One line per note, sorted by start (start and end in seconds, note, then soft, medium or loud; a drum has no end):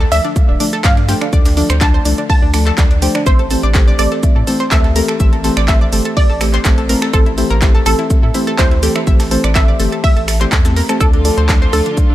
0.00 0.09 A4 medium
0.12 0.20 D2 loud
0.12 0.33 F3 medium
0.12 0.33 A3 medium
0.12 0.21 D4 medium
0.12 0.33 D4 medium
0.12 0.33 A4 medium
0.12 0.33 D5 medium
0.12 0.75 E5 medium
0.12 open hi-hat loud
0.12 shaker medium
0.25 0.33 D4 medium
0.25 snare soft
0.25 closed hi-hat medium
0.36 0.47 F3 medium
0.36 0.47 A3 medium
0.36 0.47 D4 medium
0.36 0.47 A4 medium
0.36 0.47 F5 medium
0.36 kick loud
0.36 closed hi-hat medium
0.36 shaker medium
0.49 0.56 D1 medium
0.49 0.57 D4 medium
0.60 0.77 F3 medium
0.60 0.77 A3 medium
0.60 0.77 D4 medium
0.60 0.70 D4 medium
0.60 0.77 A4 medium
0.60 0.77 D5 loud
0.60 open hi-hat loud
0.60 shaker medium
0.73 0.81 A4 loud
0.73 snare soft
0.73 closed hi-hat medium
0.84 1.14 G2 medium
0.84 0.95 A3 medium
0.84 0.95 D4 medium
0.84 0.94 D4 medium
0.84 0.95 A4 medium
0.84 0.95 D5 loud
0.84 1.28 F5 medium
0.84 kick loud
0.84 snare loud
0.84 clap loud
0.84 closed hi-hat medium
0.84 shaker medium
0.97 1.06 D4 medium
0.97 snare medium
0.97 closed hi-hat soft
1.09 1.26 F3 medium
1.09 1.26 A3 medium
1.09 1.26 D4 medium
1.09 1.18 G4 medium
1.09 1.26 A4 medium
1.09 1.26 C5 loud
1.09 snare loud
1.09 open hi-hat loud
1.09 shaker medium
1.21 1.30 D4 medium
1.21 finger snap medium
1.21 closed hi-hat medium
1.33 1.63 D2 medium
1.33 1.44 F3 medium
1.33 1.44 A3 medium
1.33 1.44 D4 medium
1.33 1.44 A4 medium
1.33 1.42 D5 loud
1.33 1.44 D5 medium
1.33 kick loud
1.33 closed hi-hat medium
1.33 shaker medium
1.46 1.54 D4 medium
1.46 snare loud
1.46 open hi-hat medium
1.46 shaker medium
1.57 1.68 F3 loud
1.57 1.68 A3 medium
1.57 1.68 D4 medium
1.57 1.67 D4 medium
1.57 1.68 A4 medium
1.57 1.68 D5 loud
1.57 open hi-hat loud
1.70 1.99 D2 medium
1.70 1.78 C5 medium
1.70 finger snap medium
1.70 closed hi-hat soft
1.70 shaker medium
1.81 1.92 F3 loud
1.81 1.92 A3 medium
1.81 1.92 D4 medium
1.81 1.91 D4 medium
1.81 1.92 A4 medium
1.81 1.92 D5 loud
1.81 2.25 A5 medium
1.81 kick loud
1.81 snare loud
1.81 clap loud
1.81 closed hi-hat medium
1.81 shaker medium
1.94 2.03 C5 medium
2.05 2.14 C2 medium
2.05 2.27 F3 medium
2.05 2.27 A3 medium
2.05 2.27 D4 medium
2.05 2.15 D4 medium
2.05 2.27 A4 medium
2.05 2.27 D5 medium
2.05 snare soft
2.05 open hi-hat loud
2.05 shaker medium
2.18 2.27 D4 medium
2.18 closed hi-hat medium
2.30 2.41 F3 medium
2.30 2.41 A3 medium
2.30 2.41 D4 medium
2.30 2.41 A4 medium
2.30 2.41 F5 medium
2.30 3.17 A5 medium
2.30 kick loud
2.30 closed hi-hat medium
2.30 open hi-hat medium
2.42 2.72 D2 medium
2.42 2.51 D4 medium
2.54 2.71 F3 medium
2.54 2.71 A3 medium
2.54 2.63 D4 medium
2.54 2.71 D4 medium
2.54 2.71 A4 medium
2.54 2.71 D5 medium
2.54 finger snap medium
2.54 open hi-hat loud
2.54 shaker medium
2.66 2.75 A4 medium
2.66 snare medium
2.66 clap soft
2.66 closed hi-hat medium
2.78 3.08 D2 medium
2.78 2.89 F3 medium
2.78 2.89 A3 medium
2.78 2.89 D4 medium
2.78 2.88 D4 medium
2.78 2.89 A4 medium
2.78 2.89 D5 loud
2.78 kick loud
2.78 snare loud
2.78 clap loud
2.78 closed hi-hat medium
2.78 shaker medium
2.91 2.99 D4 medium
2.91 closed hi-hat soft
3.02 3.19 F3 medium
3.02 3.19 A3 medium
3.02 3.19 D4 medium
3.02 3.12 G4 medium
3.02 3.19 A4 medium
3.02 3.19 C5 loud
3.02 open hi-hat loud
3.02 shaker medium
3.15 3.23 D4 medium
3.15 finger snap medium
3.15 snare medium
3.15 closed hi-hat medium
3.26 3.56 A1 loud
3.26 3.37 E3 medium
3.26 3.37 A3 medium
3.26 3.37 C4 medium
3.26 3.37 C5 medium
3.26 3.90 C5 loud
3.26 3.36 E5 loud
3.26 kick loud
3.26 closed hi-hat medium
3.26 shaker medium
3.39 3.48 A4 medium
3.39 closed hi-hat soft
3.51 3.62 E3 loud
3.51 3.62 A3 medium
3.51 3.62 C4 medium
3.51 3.62 G4 medium
3.51 3.60 A4 medium
3.51 3.62 C5 loud
3.51 open hi-hat loud
3.51 shaker medium
3.63 3.93 A1 loud
3.63 3.72 D5 medium
3.63 closed hi-hat soft
3.74 3.86 E3 loud
3.74 3.86 A3 medium
3.74 3.86 C4 medium
3.74 3.86 G4 medium
3.74 3.84 A4 medium
3.74 3.86 C5 loud
3.74 kick loud
3.74 snare loud
3.74 clap loud
3.74 closed hi-hat medium
3.74 shaker medium
3.88 3.96 D5 medium
3.99 4.07 A1 loud
3.99 4.20 E3 medium
3.99 4.20 A3 medium
3.99 4.20 C4 medium
3.99 4.20 G4 medium
3.99 4.08 A4 medium
3.99 4.20 C5 medium
3.99 4.62 D5 medium
3.99 open hi-hat loud
3.99 shaker medium
4.12 4.20 A4 medium
4.12 snare soft
4.12 closed hi-hat medium
4.23 4.34 E3 medium
4.23 4.34 A3 medium
4.23 4.34 C4 medium
4.23 4.34 G4 medium
4.23 4.34 E5 medium
4.23 kick loud
4.23 closed hi-hat medium
4.23 shaker medium
4.36 4.43 A2 medium
4.36 4.44 A4 medium
4.47 4.65 E3 medium
4.47 4.64 A3 medium
4.47 4.65 C4 medium
4.47 4.64 G4 medium
4.47 4.57 A4 medium
4.47 4.65 C5 loud
4.47 open hi-hat loud
4.47 shaker medium
4.60 4.69 C5 medium
4.60 snare soft
4.60 closed hi-hat medium
4.71 5.02 D2 medium
4.71 4.83 E3 loud
4.71 4.83 A3 medium
4.71 4.83 C4 medium
4.71 4.83 G4 medium
4.71 4.81 A4 medium
4.71 4.83 C5 loud
4.71 5.15 E5 medium
4.71 kick loud
4.71 snare loud
4.71 clap loud
4.71 closed hi-hat medium
4.71 shaker medium
4.84 4.93 A4 medium
4.84 snare medium
4.84 closed hi-hat soft
4.96 5.13 E3 medium
4.96 5.13 A3 medium
4.96 5.13 C4 medium
4.96 5.13 G4 medium
4.96 5.13 A4 loud
4.96 5.05 A#4 medium
4.96 open hi-hat loud
4.96 shaker medium
5.08 5.17 A4 medium
5.08 finger snap medium
5.08 closed hi-hat medium
5.20 5.50 A1 medium
5.20 5.31 E3 medium
5.20 5.31 A3 medium
5.20 5.31 C4 medium
5.20 5.31 G4 medium
5.20 5.31 C5 medium
5.20 5.29 E5 loud
5.20 kick loud
5.20 closed hi-hat medium
5.20 shaker medium
5.33 5.41 A4 medium
5.33 closed hi-hat soft
5.44 5.55 E3 loud
5.44 5.55 A3 medium
5.44 5.55 C4 medium
5.44 5.55 G4 medium
5.44 5.54 A4 medium
5.44 5.55 C5 loud
5.44 snare medium
5.44 open hi-hat loud
5.44 shaker medium
5.57 5.86 A1 medium
5.57 5.65 D5 medium
5.57 finger snap medium
5.57 closed hi-hat medium
5.68 5.79 E3 loud
5.68 5.79 A3 medium
5.68 5.79 C4 medium
5.68 5.79 G4 medium
5.68 5.78 A4 medium
5.68 5.79 C5 loud
5.68 6.12 E5 medium
5.68 kick loud
5.68 snare loud
5.68 clap loud
5.68 closed hi-hat medium
5.68 shaker medium
5.81 5.90 D5 medium
5.92 6.01 G1 medium
5.92 6.14 E3 medium
5.92 6.14 A3 medium
5.92 6.14 C4 medium
5.92 6.14 G4 medium
5.92 6.02 A4 medium
5.92 6.14 C5 medium
5.92 snare soft
5.92 open hi-hat loud
5.92 shaker medium
6.05 6.14 A4 medium
6.05 closed hi-hat medium
6.17 6.28 E3 medium
6.17 6.28 A3 medium
6.17 6.28 C4 medium
6.17 6.28 G4 medium
6.17 7.04 D5 medium
6.17 6.28 E5 medium
6.17 kick loud
6.17 closed hi-hat medium
6.17 open hi-hat medium
6.30 6.59 A1 medium
6.30 6.38 A4 medium
6.41 6.58 E3 medium
6.41 6.58 A3 medium
6.41 6.58 C4 medium
6.41 6.58 G4 medium
6.41 6.50 A4 medium
6.41 6.58 C5 loud
6.41 finger snap medium
6.41 open hi-hat loud
6.41 shaker medium
6.53 6.62 C5 loud
6.53 snare medium
6.53 clap soft
6.53 closed hi-hat medium
6.65 6.95 A1 medium
6.65 6.76 E3 loud
6.65 6.76 A3 medium
6.65 6.76 C4 medium
6.65 6.76 G4 medium
6.65 6.75 A4 medium
6.65 6.76 C5 loud
6.65 kick loud
6.65 snare loud
6.65 clap loud
6.65 closed hi-hat medium
6.65 shaker medium
6.78 6.86 A4 medium
6.78 closed hi-hat soft
6.89 7.06 E3 loud
6.89 7.06 A3 medium
6.89 7.06 C4 medium
6.89 7.06 G4 medium
6.89 7.06 A4 loud
6.89 6.99 A#4 medium
6.89 open hi-hat loud
6.89 shaker medium
7.02 7.10 A4 medium
7.02 finger snap medium
7.02 snare medium
7.13 7.43 A1 loud
7.13 7.25 E3 medium
7.13 7.25 A3 medium
7.13 7.25 C4 medium
7.13 7.25 G4 medium
7.13 7.77 A4 loud
7.13 7.23 C5 loud
7.13 7.25 C5 medium
7.13 kick loud
7.13 closed hi-hat medium
7.13 shaker medium
7.26 7.35 E4 medium
7.26 closed hi-hat soft
7.38 7.49 E3 loud
7.38 7.49 A3 medium
7.38 7.49 C4 medium
7.38 7.47 E4 medium
7.38 7.49 G4 medium
7.38 7.49 C5 loud
7.38 open hi-hat loud
7.38 shaker medium
7.50 7.80 A1 loud
7.50 7.59 A#4 medium
7.50 closed hi-hat medium
7.62 7.73 E3 loud
7.62 7.73 A3 medium
7.62 7.73 C4 medium
7.62 7.71 E4 medium
7.62 7.73 G4 medium
7.62 7.73 C5 loud
7.62 kick loud
7.62 snare loud
7.62 clap loud
7.62 closed hi-hat medium
7.62 shaker medium
7.75 7.83 A4 medium
7.86 7.94 A1 loud
7.86 8.08 E3 medium
7.86 8.08 A3 medium
7.86 8.08 C4 medium
7.86 7.96 E4 medium
7.86 8.08 G4 medium
7.86 8.50 A4 medium
7.86 8.08 C5 medium
7.86 open hi-hat loud
7.86 shaker medium
7.99 8.07 E4 medium
7.99 snare soft
7.99 closed hi-hat medium
8.10 8.21 E3 medium
8.10 8.21 A3 medium
8.10 8.21 C4 medium
8.10 8.21 G4 medium
8.10 8.21 E5 medium
8.10 kick loud
8.10 closed hi-hat medium
8.10 shaker medium
8.23 8.31 A2 medium
8.23 8.32 E4 medium
8.34 8.52 E3 medium
8.34 8.52 A3 medium
8.34 8.52 C4 medium
8.34 8.44 E4 medium
8.34 8.52 G4 medium
8.34 8.52 C5 loud
8.34 open hi-hat loud
8.34 shaker medium
8.47 8.56 A4 loud
8.47 snare soft
8.47 closed hi-hat medium
8.58 8.89 D2 medium
8.58 8.70 E3 medium
8.58 8.70 A3 medium
8.58 8.70 C4 medium
8.58 8.68 E4 medium
8.58 8.70 G4 medium
8.58 8.70 C5 loud
8.58 9.03 C5 medium
8.58 kick loud
8.58 snare loud
8.58 clap loud
8.58 closed hi-hat medium
8.58 shaker medium
8.71 8.80 E4 medium
8.71 snare medium
8.71 closed hi-hat soft
8.83 9.00 E3 medium
8.83 9.00 A3 medium
8.83 9.00 C4 medium
8.83 8.92 G4 medium
8.83 9.00 G4 medium
8.83 9.00 A4 loud
8.83 snare loud
8.83 open hi-hat loud
8.83 shaker medium
8.96 9.04 E4 medium
8.96 finger snap medium
8.96 closed hi-hat medium
9.07 9.37 A1 medium
9.07 9.18 E3 medium
9.07 9.18 A3 medium
9.07 9.18 C4 medium
9.07 9.18 G4 medium
9.07 9.18 C5 medium
9.07 9.17 E5 loud
9.07 kick loud
9.07 closed hi-hat medium
9.07 shaker medium
9.20 9.28 A4 medium
9.20 snare loud
9.20 open hi-hat medium
9.20 shaker medium
9.31 9.42 E3 loud
9.31 9.42 A3 medium
9.31 9.42 C4 medium
9.31 9.42 G4 medium
9.31 9.41 A4 medium
9.31 9.42 C5 loud
9.31 open hi-hat loud
9.44 9.73 A1 medium
9.44 9.53 D5 medium
9.44 finger snap medium
9.44 closed hi-hat medium
9.44 shaker medium
9.55 9.67 E3 loud
9.55 9.67 A3 medium
9.55 9.67 C4 medium
9.55 9.67 G4 medium
9.55 9.65 A4 medium
9.55 9.67 C5 loud
9.55 9.99 E5 medium
9.55 kick loud
9.55 snare loud
9.55 clap loud
9.55 closed hi-hat medium
9.55 shaker medium
9.68 9.77 D5 medium
9.80 9.88 G1 medium
9.80 10.01 E3 medium
9.80 10.01 A3 medium
9.80 10.01 C4 medium
9.80 10.01 G4 medium
9.80 9.89 A4 medium
9.80 10.01 C5 medium
9.80 snare soft
9.80 open hi-hat loud
9.80 shaker medium
9.92 10.01 A4 medium
9.92 closed hi-hat medium
10.04 10.15 E3 medium
10.04 10.15 A3 medium
10.04 10.15 C4 medium
10.04 10.15 G4 medium
10.04 10.91 E5 loud
10.04 10.15 E5 medium
10.04 kick loud
10.04 closed hi-hat medium
10.04 open hi-hat medium
10.16 10.46 A1 medium
10.16 10.25 A4 medium
10.16 closed hi-hat soft
10.28 10.37 A4 medium
10.28 finger snap medium
10.28 snare loud
10.28 open hi-hat loud
10.28 shaker medium
10.41 10.51 E3 medium
10.41 10.51 A3 medium
10.41 10.51 C4 medium
10.41 10.51 G4 medium
10.41 10.49 C5 loud
10.41 10.51 D5 medium
10.41 snare soft
10.41 clap soft
10.41 closed hi-hat medium
10.52 10.82 E2 loud
10.52 10.62 A4 medium
10.52 kick loud
10.52 clap loud
10.52 closed hi-hat medium
10.52 shaker medium
10.65 10.75 E3 medium
10.65 10.75 A3 medium
10.65 10.75 C4 medium
10.65 10.75 G4 medium
10.65 10.74 A4 medium
10.65 10.75 A4 medium
10.65 snare loud
10.65 closed hi-hat soft
10.65 shaker medium
10.76 10.86 A#4 medium
10.76 snare soft
10.76 open hi-hat loud
10.89 10.99 E3 medium
10.89 10.99 A3 medium
10.89 10.99 C4 medium
10.89 10.99 G4 medium
10.89 10.98 A4 medium
10.89 10.99 C5 medium
10.89 finger snap medium
10.89 closed hi-hat medium
10.89 shaker medium
11.01 11.31 D2 loud
11.01 12.15 D3 medium
11.01 12.15 D4 medium
11.01 12.15 F4 medium
11.01 11.64 A4 loud
11.01 12.15 A4 medium
11.01 11.10 D5 loud
11.01 kick loud
11.01 closed hi-hat medium
11.01 shaker medium
11.13 11.22 D4 medium
11.13 closed hi-hat soft
11.25 11.36 F3 loud
11.25 11.36 A3 medium
11.25 11.34 D4 medium
11.25 11.36 D4 medium
11.25 11.36 A4 medium
11.25 11.36 D5 loud
11.25 open hi-hat loud
11.25 shaker medium
11.38 11.67 D2 loud
11.38 11.46 C5 medium
11.38 closed hi-hat medium
11.49 11.60 F3 loud
11.49 11.60 A3 medium
11.49 11.60 D4 medium
11.49 11.59 D4 medium
11.49 11.60 A4 medium
11.49 11.60 D5 loud
11.49 kick loud
11.49 snare loud
11.49 clap loud
11.49 closed hi-hat medium
11.49 shaker medium
11.62 11.70 C5 medium
11.73 11.82 D2 loud
11.73 11.95 F3 medium
11.73 11.95 A3 medium
11.73 11.95 D4 medium
11.73 11.83 D4 medium
11.73 12.15 A4 loud
11.73 11.95 A4 medium
11.73 11.95 D5 medium
11.73 open hi-hat loud
11.73 shaker medium
11.86 11.95 D4 medium
11.86 snare soft
11.86 closed hi-hat medium
11.97 12.08 F3 medium
11.97 12.08 A3 medium
11.97 12.08 D4 medium
11.97 12.08 A4 medium
11.97 12.08 F5 medium
11.97 kick loud
11.97 closed hi-hat medium
11.97 shaker medium
12.10 12.15 D1 medium
12.10 12.15 D4 medium